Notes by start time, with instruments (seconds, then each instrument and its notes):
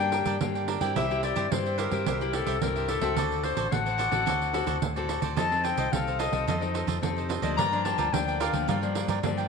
Already playing: fingered electric bass G2, nylon-string guitar G3, cavaquinho D4 A#4 D5 G5, clarinet G5
0.00 nylon-string guitar A#3 D4 G4, pandeiro
0.12 cavaquinho D4 A#4 D5 G5, pandeiro
0.25 fingered electric bass G2, cavaquinho D4 A#4 D5 G5, pandeiro
0.41 fingered electric bass G2, nylon-string guitar D3 A#3 D4 G4, pandeiro
0.55 cavaquinho A#4 D5 G5, pandeiro
0.68 cavaquinho D4 A#4 D5 G5, pandeiro
0.81 fingered electric bass G2, nylon-string guitar C4 E4 G4, cavaquinho A#4 D5 G5, pandeiro
0.96 fingered electric bass C2, nylon-string guitar C3, cavaquinho E4 G4 C5 E5, clarinet E5, pandeiro
1.11 nylon-string guitar C4 E4 G4, pandeiro
1.23 cavaquinho E4 G4 C5 E5, clarinet D5, pandeiro
1.36 fingered electric bass G2, cavaquinho E4 G4 C5 E5, pandeiro
1.51 nylon-string guitar G2 C4 E4 G4, fingered electric bass G2, clarinet C5, pandeiro
1.66 cavaquinho G4 C5 E5, pandeiro
1.78 cavaquinho E4 G4 C5 E5, clarinet A#4, pandeiro
1.91 fingered electric bass G2, nylon-string guitar C4 E4 G4, cavaquinho G4 C5 E5, pandeiro
2.06 fingered electric bass C2, nylon-string guitar C3, cavaquinho E4 G4 C5 E5, clarinet A#4, pandeiro
2.21 nylon-string guitar C4 E4 G4, pandeiro
2.33 cavaquinho E4 G4 C5 E5, clarinet A4, pandeiro
2.46 fingered electric bass C2, cavaquinho E4 G4 C5 E5, pandeiro
2.62 fingered electric bass C2, nylon-string guitar G2 C4 E4 G4, clarinet A#4, pandeiro
2.76 cavaquinho G4 C5 E5, pandeiro
2.88 cavaquinho E4 G4 C5 E5, clarinet A4, pandeiro
3.01 fingered electric bass C#2, nylon-string guitar C4 F#4 A4, cavaquinho G4 C5 E5, pandeiro
3.17 fingered electric bass D2, nylon-string guitar D3, cavaquinho F#4 A4 C5 D5, pandeiro
3.31 pandeiro
3.43 cavaquinho F#4 A4 C5 D5, clarinet C5, pandeiro
3.57 fingered electric bass A1, cavaquinho F#4 A4 C5 D5, pandeiro
3.72 fingered electric bass A1, nylon-string guitar A2 C4 F#4 A4, clarinet F#5, pandeiro
3.86 cavaquinho A4 C5 D5, pandeiro
3.98 cavaquinho F#4 A4 C5 D5, pandeiro
4.11 fingered electric bass A1, nylon-string guitar C4 F#4 A4, cavaquinho A4 C5 D5, pandeiro
4.26 fingered electric bass D2, nylon-string guitar D3, cavaquinho F#4 A4 C5 D5, pandeiro
4.42 pandeiro
4.53 nylon-string guitar C4 F#4 A4, cavaquinho F#4 A4 C5 D5, pandeiro
4.67 fingered electric bass D2, cavaquinho F#4 A4 C5 D5, pandeiro
4.82 fingered electric bass D2, nylon-string guitar A2, pandeiro
4.96 nylon-string guitar C4 F#4 A4, cavaquinho A4 C5 D5, pandeiro
5.08 cavaquinho F#4 A4 C5 D5, pandeiro
5.22 fingered electric bass D2, cavaquinho A4 C5 D5, pandeiro
5.36 fingered electric bass F2, nylon-string guitar F3 C4 D#4 A4, cavaquinho F4 A4 C5 D#5, clarinet A5, pandeiro
5.51 nylon-string guitar C4 D#4 A4, pandeiro
5.64 cavaquinho F4 A4 C5 D#5, clarinet G5, pandeiro
5.77 fingered electric bass C2, cavaquinho F4 A4 C5 D#5, pandeiro
5.92 fingered electric bass C2, nylon-string guitar C3 C4 D#4 A4, clarinet F5, pandeiro
6.07 cavaquinho A4 C5 D#5, pandeiro
6.19 cavaquinho F4 A4 C5 D#5, clarinet D#5, pandeiro
6.32 fingered electric bass C2, nylon-string guitar C4 D#4 A4, cavaquinho A4 C5 D#5, pandeiro
6.47 fingered electric bass F2, nylon-string guitar F3, cavaquinho F4 A4 C5 D#5, clarinet D#5, pandeiro
6.61 nylon-string guitar C4 D#4 A4, pandeiro
6.74 cavaquinho F4 A4 C5 D#5, pandeiro
6.87 fingered electric bass F2, cavaquinho F4 A4 C5 D#5, pandeiro
7.02 fingered electric bass F2, nylon-string guitar C3 C4 D#4 A4, pandeiro
7.17 cavaquinho A4 C5 D#5, pandeiro
7.29 cavaquinho F4 A4 C5 D#5, pandeiro
7.42 fingered electric bass D2, nylon-string guitar F3 A#3 D4, cavaquinho A4 C5 D#5, pandeiro
7.57 nylon-string guitar G2, fingered electric bass G2, cavaquinho F4 A#4 D5 G5, clarinet A#5, pandeiro
7.72 nylon-string guitar F3 A#3 D4, pandeiro
7.85 cavaquinho F4 A#4 D5 G5, clarinet A5, pandeiro
7.98 fingered electric bass D2, cavaquinho F4 A#4 D5 G5, pandeiro
8.13 fingered electric bass D2, nylon-string guitar D3 F3 A#3 D4, clarinet G5, pandeiro
8.27 cavaquinho A#4 D5 G5, pandeiro
8.40 cavaquinho F4 A#4 D5 G5, clarinet F5, pandeiro
8.53 fingered electric bass D2, nylon-string guitar F3 A#3 D4, cavaquinho D5 G5, pandeiro
8.68 nylon-string guitar G2, fingered electric bass G2, cavaquinho F4 A#4 D5 G5, clarinet F5, pandeiro
8.82 nylon-string guitar F3 A#3 D4, pandeiro
8.95 cavaquinho F4 A#4 D5 G5, pandeiro
9.08 fingered electric bass G2, cavaquinho F4 A#4 D5 G5, pandeiro
9.23 fingered electric bass G2, nylon-string guitar D3 F3 A#3 D4, pandeiro
9.37 cavaquinho A#4 D5 G5, pandeiro